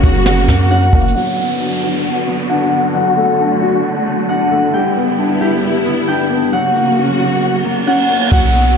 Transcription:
Already playing: C#3 F#3 A3 A#3 B3 C#4 F#4 F#5
0.03 F#1 F#4, kick, open hi-hat
0.14 closed hi-hat
0.26 F#5, snare
0.37 closed hi-hat
0.48 F#2 A#3, kick, snare
0.60 closed hi-hat
0.70 C#4 F#5, closed hi-hat
0.82 closed hi-hat
0.93 F#1 A#3, kick, closed hi-hat
1.00 closed hi-hat
1.08 closed hi-hat
1.15 D3 F#3 B3 F#4 F#5, downlifter
1.38 B3
1.60 D4
1.83 F#4
2.05 F#5
2.27 B3
2.50 D4 F#5
2.72 B3
2.94 F#3 A3 F#5
3.17 A3
3.39 D4
3.62 F#4
3.84 F#5
4.06 A3
4.29 D4 F#5
4.51 A3
4.73 G3 B3 E4 G5
4.97 B3
5.18 D4
5.41 E4 G4
5.63 G4
5.86 B3
6.08 D4 G5
6.30 B3
6.53 C#3 F#3 A#3 F#4 F#5
6.75 A#3
6.98 C#4
7.20 F#4
7.42 F#5, reverse cymbal
7.64 A#3
7.87 C#4 F#5
8.10 A#3
8.32 B1 F#3 F#5, kick, crash, downlifter
8.43 closed hi-hat
8.54 B3, closed hi-hat
8.65 closed hi-hat

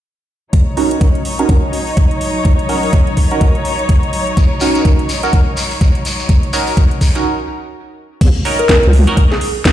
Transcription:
0.53 F#3 D#4 C#5, kick, closed hi-hat
0.77 C#4 D#4 F#4 A#4, open hi-hat
0.91 closed hi-hat
1.01 kick, closed hi-hat
1.15 closed hi-hat
1.25 open hi-hat
1.39 C#4 D#4 F#4 A#4, closed hi-hat
1.49 kick, closed hi-hat
1.73 open hi-hat
1.87 open hi-hat
1.97 kick, closed hi-hat
2.11 closed hi-hat
2.21 open hi-hat
2.45 kick, closed hi-hat
2.59 closed hi-hat
2.69 C#4 D#4 F#4 A#4, open hi-hat
2.83 open hi-hat
2.93 kick, closed hi-hat
3.07 closed hi-hat
3.17 kick, open hi-hat
3.31 C#4 D#4 F#4 A#4, closed hi-hat
3.41 kick, closed hi-hat
3.55 closed hi-hat
3.65 open hi-hat
3.79 closed hi-hat
3.89 kick, closed hi-hat
4.03 closed hi-hat
4.13 open hi-hat
4.27 closed hi-hat
4.37 kick, closed hi-hat, shekere
4.60 C#4 D#4 F#4 A#4, open hi-hat, shekere
4.75 closed hi-hat, shekere
4.85 kick, closed hi-hat, shekere
4.99 closed hi-hat
5.09 open hi-hat, shekere
5.23 C#4 D#4 F#4 A#4, closed hi-hat, shekere
5.33 kick, closed hi-hat, shekere
5.57 open hi-hat, shekere
5.71 open hi-hat, shekere
5.81 kick, closed hi-hat, shekere
5.95 closed hi-hat
6.05 open hi-hat, shekere
6.19 shekere
6.29 kick, closed hi-hat, shekere
6.43 closed hi-hat
6.53 C#4 D#4 F#4 A#4, open hi-hat, shekere
6.67 open hi-hat, shekere
6.77 kick, closed hi-hat, shekere
6.91 closed hi-hat
7.01 kick, open hi-hat, shekere
7.15 C#4 D#4 F#4 A#4, closed hi-hat, shekere
8.21 D#2, kick, closed hi-hat, crash
8.45 C#4 D#4 F#4 A#4, open hi-hat
8.59 A#4, closed hi-hat
8.69 kick, snare, closed hi-hat
8.83 C#2, closed hi-hat
8.93 open hi-hat
9.07 C#4 D#4 F#4 A#4, closed hi-hat
9.17 kick, closed hi-hat
9.31 G#4, snare
9.41 G#4, open hi-hat
9.65 kick, snare, closed hi-hat

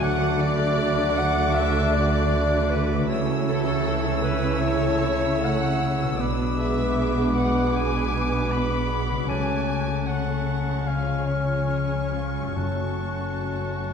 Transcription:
Already playing: D3 F#3 A3 D4 F#4
0.00 D2 D3 A3 D5 F#5 D6 F#6
0.20 D4
0.40 F#4 D5
0.59 A4
0.78 F#4
0.96 D4
1.15 A3 F#5
1.36 D4
1.55 F#4 E5
1.75 A4
1.93 F#4 D5
2.15 D4
2.33 A3
2.52 D4
2.70 F#4 B4
2.90 C#3 A4
2.98 A3
3.02 E4
3.06 C#2 A3 A4 C#5 E6
3.10 C#3 E3 A3 E6
3.31 C#4
3.49 E4 A4
3.70 A4
3.87 E4
4.06 C#4
4.23 A3 B4
4.44 C#4
4.60 E4 C#5
4.82 A4
5.03 E4
5.26 C#4
5.43 A3 F#5
5.64 C#4
5.84 E4
6.03 B2 A4
6.07 B3
6.12 D4
6.16 B3 D4 D5 D6
6.21 B1 B2 G#3 B3 B4
6.40 D4
6.59 G#4 E5
6.78 B4
6.97 G#4 D6
7.16 D4
7.36 B3 F#5
7.55 D4
7.74 G#4 G#5
7.92 B4
8.12 G#4
8.31 D4
8.50 B3 B5
8.69 D4
8.89 G#4
9.08 C#3 B4
9.15 A3
9.19 F#4
9.24 F#3 A3 C#5
9.28 C#2 C#3 A3 C#4 G#5 A5 F#6
9.48 A3
9.68 C#4
9.88 F#4
10.07 C#4 F#5 A5 C#6 F#6
10.28 A3
10.47 F#3
10.68 C#3 A3
10.73 G#3
10.78 F4
10.82 C#5 F5
10.87 F3 C#4 F5 G#5 F6
11.07 G#3
11.26 C#4 C#5
11.48 F4
11.68 G#3 C#4
11.90 G#3
12.10 F3 F4
12.32 G#3
12.38 F#2
12.43 A3
12.47 F#4
12.52 F#2 F#3 A3 C#4 F#4 C#5
12.56 F#1 F#2 F#4 A5 F#6
12.76 A3
13.00 C#4
13.22 F#4
13.44 C#4
13.66 A3
13.87 F#3

